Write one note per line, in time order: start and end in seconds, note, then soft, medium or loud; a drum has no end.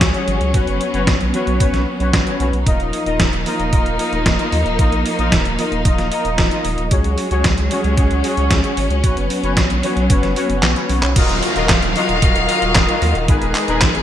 0.00 0.13 C#2 loud
0.00 2.62 F#3 medium
0.00 0.52 G#3 medium
0.00 0.11 C#4 medium
0.00 2.62 C#4 medium
0.00 0.11 F#4 medium
0.00 0.11 G#4 medium
0.00 0.11 C#5 loud
0.00 kick loud
0.00 snare loud
0.00 closed hi-hat medium
0.14 0.51 C#4 medium
0.14 0.51 F#4 medium
0.14 0.51 G#4 medium
0.14 0.51 C#5 medium
0.14 closed hi-hat soft
0.28 0.40 G#1 loud
0.28 closed hi-hat medium
0.41 0.53 C#2 medium
0.41 closed hi-hat soft
0.54 0.66 B1 loud
0.54 2.64 B3 medium
0.54 0.91 C#4 medium
0.54 0.91 F#4 medium
0.54 0.91 B4 medium
0.54 0.91 C#5 medium
0.54 kick loud
0.54 closed hi-hat medium
0.67 0.79 F#1 medium
0.67 closed hi-hat soft
0.81 closed hi-hat medium
0.94 1.06 F#1 medium
0.94 1.07 C#4 medium
0.94 1.07 F#4 medium
0.94 1.07 B4 medium
0.94 1.07 C#5 loud
0.94 closed hi-hat soft
1.07 1.19 B1 loud
1.07 kick loud
1.07 snare loud
1.07 closed hi-hat medium
1.21 1.32 B1 medium
1.21 closed hi-hat soft
1.34 1.57 C#4 medium
1.34 1.57 F#4 medium
1.34 1.57 B4 medium
1.34 1.57 C#5 loud
1.34 closed hi-hat medium
1.47 1.59 B1 medium
1.47 closed hi-hat soft
1.60 1.72 B1 loud
1.60 1.84 C#4 medium
1.60 1.84 F#4 medium
1.60 1.84 B4 medium
1.60 1.84 C#5 medium
1.60 kick loud
1.60 closed hi-hat medium
1.74 1.86 B1 medium
1.74 snare soft
1.74 closed hi-hat soft
2.00 2.12 B1 medium
2.00 2.24 C#4 medium
2.00 2.24 F#4 medium
2.00 2.24 B4 medium
2.00 2.24 C#5 medium
2.00 closed hi-hat soft
2.13 2.25 B1 loud
2.13 kick loud
2.13 snare loud
2.13 closed hi-hat medium
2.27 2.38 C#4 medium
2.27 2.38 F#4 medium
2.27 2.38 B4 medium
2.27 2.38 C#5 medium
2.27 closed hi-hat soft
2.40 2.52 B1 medium
2.40 2.53 C#4 medium
2.40 2.53 F#4 medium
2.40 2.53 B4 medium
2.40 2.53 C#5 medium
2.40 closed hi-hat medium
2.53 2.65 B1 medium
2.53 closed hi-hat soft
2.66 2.78 D#1 loud
2.66 6.87 F3 medium
2.66 6.87 A#3 medium
2.66 6.87 D#4 medium
2.66 3.03 D#4 medium
2.66 3.03 F4 medium
2.66 3.03 A#4 medium
2.66 3.03 D#5 medium
2.66 kick loud
2.66 closed hi-hat medium
2.80 2.92 D#1 medium
2.80 closed hi-hat soft
2.93 open hi-hat loud
3.06 3.18 D#1 medium
3.06 3.20 D#4 medium
3.06 3.20 F4 medium
3.06 3.20 A#4 medium
3.06 3.20 D#5 loud
3.06 closed hi-hat soft
3.20 3.32 D#1 loud
3.20 kick loud
3.20 snare loud
3.20 closed hi-hat medium
3.33 3.45 D#1 medium
3.33 closed hi-hat soft
3.46 3.70 D#4 medium
3.46 3.70 F4 medium
3.46 3.70 A#4 medium
3.46 3.70 D#5 medium
3.46 open hi-hat loud
3.60 3.71 D#1 medium
3.60 closed hi-hat soft
3.73 3.85 D#1 loud
3.73 3.96 D#4 medium
3.73 3.96 F4 medium
3.73 3.96 A#4 medium
3.73 3.96 D#5 medium
3.73 kick loud
3.73 closed hi-hat medium
3.86 3.98 D#1 medium
3.86 closed hi-hat soft
3.99 4.36 D#4 medium
3.99 4.36 F4 medium
3.99 4.36 A#4 medium
3.99 4.36 D#5 loud
3.99 open hi-hat loud
4.13 4.25 D#1 medium
4.13 closed hi-hat soft
4.26 4.38 D#1 loud
4.26 kick medium
4.26 snare loud
4.26 closed hi-hat medium
4.39 4.76 D#4 medium
4.39 4.76 F4 medium
4.39 4.76 A#4 medium
4.39 4.76 D#5 medium
4.39 closed hi-hat soft
4.52 4.64 D#2 medium
4.52 open hi-hat loud
4.66 4.78 D#1 medium
4.66 closed hi-hat soft
4.79 4.91 A#1 loud
4.79 5.16 D#4 medium
4.79 5.16 F4 medium
4.79 5.16 A#4 medium
4.79 5.16 D#5 medium
4.79 kick loud
4.79 closed hi-hat medium
4.92 5.04 A#1 medium
4.92 closed hi-hat soft
5.06 open hi-hat loud
5.19 5.31 A#1 medium
5.19 5.32 D#4 medium
5.19 5.32 F4 medium
5.19 5.32 A#4 medium
5.19 5.32 D#5 loud
5.19 closed hi-hat soft
5.32 5.44 D#1 medium
5.32 kick loud
5.32 snare loud
5.32 closed hi-hat medium
5.45 5.57 D#1 medium
5.45 closed hi-hat soft
5.58 5.82 D#4 medium
5.58 5.82 F4 medium
5.58 5.82 A#4 medium
5.58 5.82 D#5 loud
5.58 open hi-hat loud
5.72 5.84 D#1 medium
5.72 closed hi-hat soft
5.85 5.97 D#1 loud
5.85 6.08 D#4 medium
5.85 6.08 F4 medium
5.85 6.08 A#4 medium
5.85 6.08 D#5 medium
5.85 kick loud
5.85 closed hi-hat medium
5.98 6.10 D#1 medium
5.98 snare soft
5.98 closed hi-hat soft
6.12 6.48 D#4 medium
6.12 6.48 F4 medium
6.12 6.48 A#4 medium
6.12 6.48 D#5 loud
6.12 open hi-hat loud
6.25 6.37 D#1 medium
6.25 closed hi-hat soft
6.38 6.50 D#1 loud
6.38 kick medium
6.38 snare loud
6.38 open hi-hat medium
6.51 6.88 D#4 medium
6.51 6.88 F4 medium
6.51 6.88 A#4 medium
6.51 6.88 D#5 medium
6.51 closed hi-hat soft
6.65 6.77 D#1 medium
6.65 open hi-hat loud
6.78 6.90 D#1 medium
6.78 closed hi-hat soft
6.91 7.03 C#2 loud
6.91 9.02 F#3 medium
6.91 9.02 G#3 medium
6.91 7.28 C#4 medium
6.91 11.12 C#4 medium
6.91 7.28 F#4 medium
6.91 7.28 G#4 medium
6.91 7.28 C#5 medium
6.91 kick loud
6.91 closed hi-hat medium
7.04 7.17 C#2 medium
7.04 closed hi-hat soft
7.18 open hi-hat loud
7.31 7.43 C#2 medium
7.31 7.45 C#4 medium
7.31 7.45 F#4 medium
7.31 7.45 G#4 medium
7.31 7.45 C#5 loud
7.31 closed hi-hat soft
7.44 7.56 C#2 loud
7.44 kick medium
7.44 snare loud
7.44 closed hi-hat medium
7.58 7.70 C#2 medium
7.58 closed hi-hat soft
7.71 7.94 C#4 medium
7.71 7.94 F#4 medium
7.71 7.94 G#4 medium
7.71 7.94 C#5 loud
7.71 open hi-hat loud
7.84 7.96 C#2 medium
7.84 closed hi-hat soft
7.97 8.09 C#2 loud
7.97 8.21 C#4 medium
7.97 8.21 F#4 medium
7.97 8.21 G#4 medium
7.97 8.21 C#5 medium
7.97 kick loud
7.97 closed hi-hat medium
8.11 8.23 C#2 medium
8.11 closed hi-hat soft
8.24 8.61 C#4 medium
8.24 8.61 F#4 medium
8.24 8.61 G#4 medium
8.24 8.61 C#5 loud
8.24 open hi-hat loud
8.37 8.49 C#2 medium
8.37 closed hi-hat soft
8.51 8.63 C#2 loud
8.51 kick loud
8.51 snare loud
8.51 closed hi-hat medium
8.64 9.00 C#4 medium
8.64 9.01 F#4 medium
8.64 9.00 G#4 medium
8.64 9.01 C#5 medium
8.64 closed hi-hat soft
8.77 8.89 G#1 medium
8.77 open hi-hat loud
8.90 9.02 C#2 medium
8.90 closed hi-hat soft
9.04 9.16 B1 loud
9.04 11.14 F#3 medium
9.04 11.14 B3 medium
9.04 9.40 C#4 medium
9.04 9.40 F#4 medium
9.04 9.40 B4 medium
9.04 9.40 C#5 medium
9.04 kick loud
9.04 closed hi-hat medium
9.17 9.29 F#1 medium
9.17 closed hi-hat soft
9.30 open hi-hat loud
9.43 9.55 F#1 medium
9.43 9.57 C#4 medium
9.43 9.57 F#4 medium
9.43 9.57 B4 medium
9.43 9.57 C#5 loud
9.43 closed hi-hat soft
9.57 9.69 B1 loud
9.57 kick medium
9.57 snare loud
9.57 closed hi-hat medium
9.70 9.82 B1 medium
9.70 closed hi-hat soft
9.83 10.07 C#4 medium
9.83 10.07 F#4 medium
9.83 10.07 B4 medium
9.83 10.07 C#5 medium
9.83 open hi-hat loud
9.97 10.09 B1 medium
9.97 closed hi-hat soft
10.10 10.22 F#1 loud
10.10 10.33 C#4 medium
10.10 10.33 F#4 medium
10.10 10.33 B4 medium
10.10 10.33 C#5 medium
10.10 kick loud
10.10 closed hi-hat loud
10.23 10.35 F#1 medium
10.23 snare soft
10.23 closed hi-hat soft
10.36 10.73 C#4 medium
10.36 10.73 F#4 medium
10.36 10.73 B4 medium
10.36 10.73 C#5 loud
10.36 open hi-hat loud
10.50 10.62 F#1 medium
10.50 closed hi-hat soft
10.63 10.75 B1 loud
10.63 snare loud
10.63 clap loud
10.63 open hi-hat medium
10.76 11.13 C#4 medium
10.76 11.13 F#4 medium
10.76 11.13 B4 medium
10.76 11.13 C#5 medium
10.76 closed hi-hat soft
10.89 11.01 B1 medium
10.89 open hi-hat loud
11.03 11.15 B1 medium
11.03 clap medium
11.03 closed hi-hat soft
11.16 11.28 D#1 loud
11.16 14.03 D#3 medium
11.16 13.26 F#3 medium
11.16 11.53 F4 medium
11.16 11.53 F#4 medium
11.16 11.53 A#4 medium
11.16 11.53 D#5 medium
11.16 13.26 F5 medium
11.16 kick loud
11.16 closed hi-hat loud
11.16 crash loud
11.16 downlifter medium
11.29 11.41 D#1 medium
11.29 closed hi-hat soft
11.43 open hi-hat loud
11.56 11.68 D#1 medium
11.56 11.69 F4 loud
11.56 11.69 F#4 medium
11.56 11.69 A#4 medium
11.56 11.69 D#5 loud
11.56 closed hi-hat soft
11.69 11.81 D#1 loud
11.69 kick loud
11.69 snare loud
11.69 clap medium
11.69 closed hi-hat medium
11.82 11.94 D#1 medium
11.82 closed hi-hat soft
11.96 12.19 F4 medium
11.96 12.19 F#4 medium
11.96 12.19 A#4 medium
11.96 12.19 D#5 loud
11.96 open hi-hat loud
12.09 12.21 D#1 medium
12.09 closed hi-hat soft
12.22 12.34 D#1 loud
12.22 12.46 F4 medium
12.22 12.46 F#4 medium
12.22 12.46 A#4 medium
12.22 12.46 D#5 medium
12.22 kick loud
12.22 closed hi-hat loud
12.36 12.48 D#1 medium
12.36 closed hi-hat soft
12.49 12.85 F4 medium
12.49 12.85 F#4 medium
12.49 12.85 A#4 medium
12.49 12.85 D#5 loud
12.49 open hi-hat loud
12.62 12.74 D#1 medium
12.62 closed hi-hat soft
12.75 12.87 D#1 loud
12.75 kick loud
12.75 snare loud
12.75 clap medium
12.75 closed hi-hat medium
12.89 13.25 F4 medium
12.89 13.25 F#4 medium
12.89 13.25 A#4 medium
12.89 13.25 D#5 medium
12.89 closed hi-hat soft
13.02 13.14 D#2 loud
13.02 open hi-hat loud
13.15 13.27 D#1 medium
13.15 closed hi-hat soft
13.28 13.40 G#1 loud
13.28 14.03 G#3 medium
13.28 14.03 B3 medium
13.28 13.65 D#4 medium
13.28 14.03 G#4 medium
13.28 13.65 G#4 medium
13.28 13.65 A#4 medium
13.28 13.65 B4 medium
13.28 kick loud
13.28 closed hi-hat medium
13.42 13.54 D#1 medium
13.42 closed hi-hat soft
13.55 clap medium
13.55 open hi-hat loud
13.68 13.80 D#1 medium
13.68 13.82 D#4 medium
13.68 13.82 G#4 medium
13.68 13.82 A#4 medium
13.68 13.82 B4 loud
13.68 closed hi-hat soft
13.81 13.93 G#1 loud
13.81 kick loud
13.81 snare loud
13.81 clap medium
13.81 closed hi-hat medium
13.95 14.03 G#1 medium
13.95 closed hi-hat soft